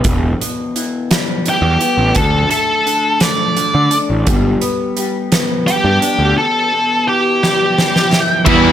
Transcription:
0.04 picked electric bass E1, clean electric guitar E2, kick, closed hi-hat
0.41 clean electric guitar B2, closed hi-hat
0.76 clean electric guitar E3, closed hi-hat
1.11 clean electric guitar G3, snare, closed hi-hat
1.46 clean electric guitar E3, lead electric guitar G4, closed hi-hat
1.62 picked electric bass E2
1.81 clean electric guitar B3, closed hi-hat
1.98 picked electric bass A1
2.15 picked electric bass D2, clean electric guitar D3, lead electric guitar A4, kick, closed hi-hat
2.51 clean electric guitar A3, lead electric guitar A4, closed hi-hat
2.86 clean electric guitar D3, closed hi-hat
3.20 clean electric guitar A3, lead electric guitar D5, snare, closed hi-hat
3.56 clean electric guitar D3, closed hi-hat
3.75 picked electric bass D3
3.91 clean electric guitar D4, closed hi-hat
4.10 picked electric bass A1
4.26 picked electric bass G1, clean electric guitar G3, kick, closed hi-hat
4.61 clean electric guitar B3, closed hi-hat
4.97 clean electric guitar G3, closed hi-hat
5.32 clean electric guitar B3, snare, closed hi-hat
5.67 clean electric guitar G3, lead electric guitar G4, closed hi-hat
5.85 picked electric bass G2
6.02 clean electric guitar D4, closed hi-hat
6.19 picked electric bass D2
6.38 clean electric guitar E2, lead electric guitar A4
6.73 clean electric guitar B2
7.07 clean electric guitar E3, lead electric guitar G4 G5
7.43 clean electric guitar G3, lead electric guitar G4, snare
7.77 clean electric guitar E3, snare
7.96 snare
8.11 clean electric guitar E4, snare
8.46 distorted electric guitar E2 B2 E3 G3, picked electric bass E2, lead electric guitar E4 E5, kick, ride
8.50 distorted electric guitar B3 E4

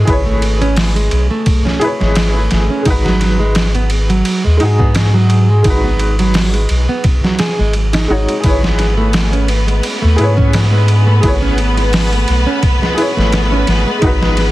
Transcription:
Already playing: nylon-string guitar G#3, felt piano E4 G#4 B4 C#5
0.05 sub bass G#1, felt piano E4 G#4, kick, ride
0.10 felt piano B4 C#5
0.26 nylon-string guitar A3
0.42 ride
0.62 nylon-string guitar C#4, ride
0.76 snare, open hi-hat
0.96 nylon-string guitar G#3, ride
1.11 sub bass B1, ride
1.31 nylon-string guitar A3
1.46 kick, ride
1.65 nylon-string guitar C#4, snare
1.79 felt piano E4 G#4, ride
1.84 felt piano B4 C#5
2.00 sub bass G#1, nylon-string guitar G#3, snare
2.15 snare, ride
2.35 nylon-string guitar A3
2.51 sub bass G#1, snare, ride
2.70 nylon-string guitar C#4
2.82 sub bass G#1, felt piano G#3 D#4, kick, ride
2.88 felt piano F#4 B4
3.05 nylon-string guitar F#3, snare
3.21 snare, ride
3.40 nylon-string guitar G#3
3.55 snare, ride
3.75 nylon-string guitar B3, ride
3.90 ride
4.09 nylon-string guitar F#3, ride
4.25 ride
4.44 sub bass D#2, nylon-string guitar G#3
4.57 felt piano G#3 D#4, ride
4.62 sub bass G#2, felt piano F#4 G#4
4.79 nylon-string guitar B3, kick
4.95 snare, ride
5.14 nylon-string guitar F#3
5.30 ride
5.50 nylon-string guitar G#3
5.63 sub bass G#1, felt piano G#3 D#4, kick, ride
5.67 felt piano F#4 B4
5.84 nylon-string guitar B3
5.99 ride
6.19 nylon-string guitar F#3, ride
6.34 snare, open hi-hat
6.54 nylon-string guitar G#3, ride
6.69 sub bass B1, ride
6.89 nylon-string guitar B3
7.04 kick, ride
7.24 nylon-string guitar F#3, snare
7.39 nylon-string guitar G#4, snare, ride
7.59 sub bass G#1, nylon-string guitar G#3
7.73 ride
7.93 nylon-string guitar D#4, snare, ride
8.08 sub bass G#1, felt piano G#3 D#4 F#4 C#5
8.29 nylon-string guitar G#3, ride
8.40 sub bass G#1, felt piano E4 G#4, kick, ride
8.45 violin section B3 B4, felt piano B4 C#5
8.63 nylon-string guitar G#3, snare
8.79 snare, ride
8.97 nylon-string guitar A3
9.13 snare, ride
9.32 nylon-string guitar C#4, ride
9.48 ride
9.67 nylon-string guitar G#3, ride
9.83 ride
10.02 sub bass D#2, nylon-string guitar A3
10.16 sub bass G#2, felt piano E4 G#4, ride
10.21 felt piano B4 C#5
10.37 nylon-string guitar C#4, kick
10.53 snare, ride
10.71 nylon-string guitar G#3
10.88 ride
11.07 nylon-string guitar A3
11.21 sub bass G#1, felt piano E4 G#4, kick, ride
11.25 felt piano B4 C#5
11.42 nylon-string guitar C#4
11.58 ride
11.77 nylon-string guitar G#3, ride
11.93 snare, open hi-hat
12.12 nylon-string guitar A3, ride
12.28 sub bass B1, ride
12.46 nylon-string guitar C#4
12.63 kick, ride
12.82 nylon-string guitar G#3, snare
12.94 felt piano E4 G#4, ride
12.99 felt piano B4 C#5
13.17 sub bass G#1, nylon-string guitar A3, snare
13.32 snare, ride
13.52 nylon-string guitar C#4
13.67 sub bass G#1, snare, ride
13.87 nylon-string guitar G#3
13.99 felt piano G#3 D#4, kick, ride
14.03 sub bass G#1, felt piano F#4 B4
14.21 nylon-string guitar G#3, snare
14.37 snare, ride

